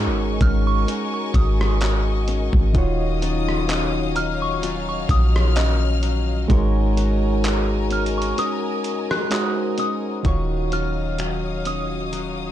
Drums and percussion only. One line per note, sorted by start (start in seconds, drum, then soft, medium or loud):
0.41 kick loud
0.41 closed hi-hat medium
0.88 closed hi-hat medium
1.34 kick medium
1.34 closed hi-hat medium
1.61 cross-stick loud
1.81 clap loud
1.81 closed hi-hat medium
2.28 closed hi-hat medium
2.53 kick medium
2.75 kick loud
2.75 closed hi-hat medium
3.22 closed hi-hat medium
3.49 cross-stick medium
3.69 clap loud
3.69 closed hi-hat medium
4.16 closed hi-hat medium
4.63 closed hi-hat medium
5.09 kick medium
5.09 closed hi-hat medium
5.36 cross-stick loud
5.56 clap loud
5.56 closed hi-hat medium
6.03 closed hi-hat medium
6.50 kick loud
6.50 closed hi-hat medium
6.97 closed hi-hat medium
7.44 clap loud
7.44 closed hi-hat medium
7.91 closed hi-hat medium
8.06 closed hi-hat medium
8.22 closed hi-hat medium
8.38 closed hi-hat medium
8.84 closed hi-hat medium
9.11 cross-stick loud
9.31 clap loud
9.31 closed hi-hat medium
9.78 closed hi-hat medium
10.25 kick loud
10.25 closed hi-hat medium
10.72 closed hi-hat medium
11.19 finger snap loud
11.19 closed hi-hat medium
11.65 closed hi-hat medium
12.13 closed hi-hat medium